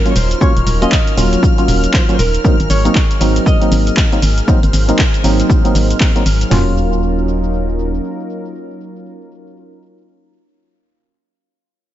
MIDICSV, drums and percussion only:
0, 0, Header, 1, 2, 480
1, 0, Start_track
1, 0, Tempo, 508475
1, 388, Time_signature, 4, 2, 24, 8
1, 11272, End_track
2, 0, Start_track
2, 0, Title_t, "Drums"
2, 53, Note_on_c, 9, 42, 37
2, 59, Note_on_c, 9, 69, 22
2, 147, Note_off_c, 9, 42, 0
2, 148, Note_on_c, 9, 46, 105
2, 153, Note_off_c, 9, 69, 0
2, 154, Note_on_c, 9, 69, 84
2, 243, Note_off_c, 9, 46, 0
2, 249, Note_off_c, 9, 69, 0
2, 293, Note_on_c, 9, 42, 64
2, 300, Note_on_c, 9, 69, 35
2, 388, Note_off_c, 9, 42, 0
2, 388, Note_on_c, 9, 36, 118
2, 394, Note_off_c, 9, 69, 0
2, 395, Note_on_c, 9, 69, 46
2, 483, Note_off_c, 9, 36, 0
2, 489, Note_off_c, 9, 69, 0
2, 534, Note_on_c, 9, 42, 55
2, 540, Note_on_c, 9, 69, 23
2, 629, Note_off_c, 9, 42, 0
2, 629, Note_on_c, 9, 46, 102
2, 635, Note_off_c, 9, 69, 0
2, 635, Note_on_c, 9, 69, 80
2, 723, Note_off_c, 9, 46, 0
2, 730, Note_off_c, 9, 69, 0
2, 774, Note_on_c, 9, 42, 66
2, 780, Note_on_c, 9, 69, 35
2, 868, Note_off_c, 9, 42, 0
2, 868, Note_on_c, 9, 36, 104
2, 869, Note_on_c, 9, 39, 112
2, 875, Note_off_c, 9, 69, 0
2, 875, Note_on_c, 9, 69, 48
2, 963, Note_off_c, 9, 36, 0
2, 963, Note_off_c, 9, 39, 0
2, 970, Note_off_c, 9, 69, 0
2, 1014, Note_on_c, 9, 42, 52
2, 1020, Note_on_c, 9, 69, 24
2, 1108, Note_off_c, 9, 42, 0
2, 1109, Note_on_c, 9, 46, 109
2, 1114, Note_off_c, 9, 69, 0
2, 1115, Note_on_c, 9, 69, 80
2, 1204, Note_off_c, 9, 46, 0
2, 1210, Note_off_c, 9, 69, 0
2, 1254, Note_on_c, 9, 42, 68
2, 1260, Note_on_c, 9, 69, 35
2, 1348, Note_off_c, 9, 42, 0
2, 1348, Note_on_c, 9, 36, 115
2, 1354, Note_off_c, 9, 69, 0
2, 1355, Note_on_c, 9, 69, 48
2, 1443, Note_off_c, 9, 36, 0
2, 1450, Note_off_c, 9, 69, 0
2, 1494, Note_on_c, 9, 42, 36
2, 1500, Note_on_c, 9, 69, 23
2, 1588, Note_off_c, 9, 42, 0
2, 1589, Note_on_c, 9, 46, 104
2, 1595, Note_off_c, 9, 69, 0
2, 1595, Note_on_c, 9, 69, 81
2, 1683, Note_off_c, 9, 46, 0
2, 1689, Note_off_c, 9, 69, 0
2, 1733, Note_on_c, 9, 42, 68
2, 1739, Note_on_c, 9, 69, 36
2, 1828, Note_off_c, 9, 42, 0
2, 1828, Note_on_c, 9, 36, 103
2, 1828, Note_on_c, 9, 39, 111
2, 1834, Note_off_c, 9, 69, 0
2, 1835, Note_on_c, 9, 69, 48
2, 1922, Note_off_c, 9, 39, 0
2, 1923, Note_off_c, 9, 36, 0
2, 1929, Note_off_c, 9, 69, 0
2, 1974, Note_on_c, 9, 42, 36
2, 1980, Note_on_c, 9, 69, 24
2, 2068, Note_off_c, 9, 42, 0
2, 2068, Note_on_c, 9, 46, 100
2, 2074, Note_off_c, 9, 69, 0
2, 2075, Note_on_c, 9, 69, 81
2, 2163, Note_off_c, 9, 46, 0
2, 2169, Note_off_c, 9, 69, 0
2, 2214, Note_on_c, 9, 42, 63
2, 2220, Note_on_c, 9, 69, 37
2, 2308, Note_off_c, 9, 42, 0
2, 2308, Note_on_c, 9, 36, 116
2, 2314, Note_off_c, 9, 69, 0
2, 2315, Note_on_c, 9, 69, 47
2, 2403, Note_off_c, 9, 36, 0
2, 2410, Note_off_c, 9, 69, 0
2, 2454, Note_on_c, 9, 42, 56
2, 2460, Note_on_c, 9, 69, 24
2, 2548, Note_off_c, 9, 42, 0
2, 2548, Note_on_c, 9, 46, 103
2, 2554, Note_off_c, 9, 69, 0
2, 2554, Note_on_c, 9, 69, 89
2, 2643, Note_off_c, 9, 46, 0
2, 2649, Note_off_c, 9, 69, 0
2, 2693, Note_on_c, 9, 42, 70
2, 2700, Note_on_c, 9, 69, 37
2, 2788, Note_off_c, 9, 42, 0
2, 2788, Note_on_c, 9, 36, 106
2, 2788, Note_on_c, 9, 39, 113
2, 2794, Note_off_c, 9, 69, 0
2, 2794, Note_on_c, 9, 69, 47
2, 2882, Note_off_c, 9, 39, 0
2, 2883, Note_off_c, 9, 36, 0
2, 2889, Note_off_c, 9, 69, 0
2, 2933, Note_on_c, 9, 42, 55
2, 2940, Note_on_c, 9, 69, 25
2, 3028, Note_off_c, 9, 42, 0
2, 3029, Note_on_c, 9, 46, 104
2, 3034, Note_off_c, 9, 69, 0
2, 3035, Note_on_c, 9, 69, 85
2, 3123, Note_off_c, 9, 46, 0
2, 3129, Note_off_c, 9, 69, 0
2, 3174, Note_on_c, 9, 42, 74
2, 3180, Note_on_c, 9, 69, 37
2, 3268, Note_off_c, 9, 42, 0
2, 3268, Note_on_c, 9, 36, 118
2, 3274, Note_off_c, 9, 69, 0
2, 3275, Note_on_c, 9, 69, 51
2, 3362, Note_off_c, 9, 36, 0
2, 3369, Note_off_c, 9, 69, 0
2, 3413, Note_on_c, 9, 42, 39
2, 3419, Note_on_c, 9, 69, 23
2, 3508, Note_off_c, 9, 42, 0
2, 3508, Note_on_c, 9, 46, 102
2, 3514, Note_off_c, 9, 69, 0
2, 3515, Note_on_c, 9, 69, 86
2, 3603, Note_off_c, 9, 46, 0
2, 3609, Note_off_c, 9, 69, 0
2, 3653, Note_on_c, 9, 42, 73
2, 3660, Note_on_c, 9, 69, 36
2, 3747, Note_on_c, 9, 39, 114
2, 3748, Note_off_c, 9, 42, 0
2, 3748, Note_on_c, 9, 36, 105
2, 3754, Note_off_c, 9, 69, 0
2, 3754, Note_on_c, 9, 69, 48
2, 3842, Note_off_c, 9, 36, 0
2, 3842, Note_off_c, 9, 39, 0
2, 3848, Note_off_c, 9, 69, 0
2, 3893, Note_on_c, 9, 42, 36
2, 3899, Note_on_c, 9, 69, 24
2, 3987, Note_off_c, 9, 42, 0
2, 3987, Note_on_c, 9, 46, 107
2, 3993, Note_off_c, 9, 69, 0
2, 3993, Note_on_c, 9, 69, 84
2, 4082, Note_off_c, 9, 46, 0
2, 4088, Note_off_c, 9, 69, 0
2, 4132, Note_on_c, 9, 42, 65
2, 4138, Note_on_c, 9, 69, 34
2, 4226, Note_off_c, 9, 42, 0
2, 4228, Note_on_c, 9, 36, 117
2, 4232, Note_off_c, 9, 69, 0
2, 4234, Note_on_c, 9, 69, 48
2, 4322, Note_off_c, 9, 36, 0
2, 4328, Note_off_c, 9, 69, 0
2, 4373, Note_on_c, 9, 42, 56
2, 4379, Note_on_c, 9, 69, 24
2, 4467, Note_off_c, 9, 42, 0
2, 4468, Note_on_c, 9, 46, 109
2, 4473, Note_off_c, 9, 69, 0
2, 4474, Note_on_c, 9, 69, 81
2, 4563, Note_off_c, 9, 46, 0
2, 4569, Note_off_c, 9, 69, 0
2, 4613, Note_on_c, 9, 42, 71
2, 4620, Note_on_c, 9, 69, 36
2, 4708, Note_off_c, 9, 42, 0
2, 4708, Note_on_c, 9, 36, 107
2, 4708, Note_on_c, 9, 39, 120
2, 4714, Note_off_c, 9, 69, 0
2, 4715, Note_on_c, 9, 69, 47
2, 4803, Note_off_c, 9, 36, 0
2, 4803, Note_off_c, 9, 39, 0
2, 4810, Note_off_c, 9, 69, 0
2, 4854, Note_on_c, 9, 42, 59
2, 4860, Note_on_c, 9, 69, 24
2, 4948, Note_off_c, 9, 42, 0
2, 4949, Note_on_c, 9, 46, 108
2, 4954, Note_off_c, 9, 69, 0
2, 4955, Note_on_c, 9, 69, 87
2, 5043, Note_off_c, 9, 46, 0
2, 5049, Note_off_c, 9, 69, 0
2, 5094, Note_on_c, 9, 42, 73
2, 5100, Note_on_c, 9, 69, 36
2, 5188, Note_off_c, 9, 42, 0
2, 5188, Note_on_c, 9, 36, 119
2, 5195, Note_off_c, 9, 69, 0
2, 5195, Note_on_c, 9, 69, 49
2, 5283, Note_off_c, 9, 36, 0
2, 5289, Note_off_c, 9, 69, 0
2, 5334, Note_on_c, 9, 42, 38
2, 5340, Note_on_c, 9, 69, 23
2, 5428, Note_off_c, 9, 42, 0
2, 5429, Note_on_c, 9, 46, 100
2, 5434, Note_off_c, 9, 69, 0
2, 5435, Note_on_c, 9, 69, 84
2, 5523, Note_off_c, 9, 46, 0
2, 5530, Note_off_c, 9, 69, 0
2, 5574, Note_on_c, 9, 42, 72
2, 5580, Note_on_c, 9, 69, 38
2, 5668, Note_off_c, 9, 42, 0
2, 5668, Note_on_c, 9, 36, 110
2, 5668, Note_on_c, 9, 39, 124
2, 5674, Note_off_c, 9, 69, 0
2, 5675, Note_on_c, 9, 69, 48
2, 5763, Note_off_c, 9, 36, 0
2, 5763, Note_off_c, 9, 39, 0
2, 5770, Note_off_c, 9, 69, 0
2, 5814, Note_on_c, 9, 42, 37
2, 5820, Note_on_c, 9, 69, 23
2, 5908, Note_off_c, 9, 42, 0
2, 5909, Note_on_c, 9, 46, 105
2, 5914, Note_off_c, 9, 69, 0
2, 5915, Note_on_c, 9, 69, 83
2, 6003, Note_off_c, 9, 46, 0
2, 6009, Note_off_c, 9, 69, 0
2, 6053, Note_on_c, 9, 42, 67
2, 6059, Note_on_c, 9, 69, 35
2, 6148, Note_off_c, 9, 42, 0
2, 6149, Note_on_c, 9, 38, 109
2, 6149, Note_on_c, 9, 43, 108
2, 6149, Note_on_c, 9, 46, 89
2, 6154, Note_off_c, 9, 69, 0
2, 6243, Note_off_c, 9, 38, 0
2, 6243, Note_off_c, 9, 43, 0
2, 6243, Note_off_c, 9, 46, 0
2, 11272, End_track
0, 0, End_of_file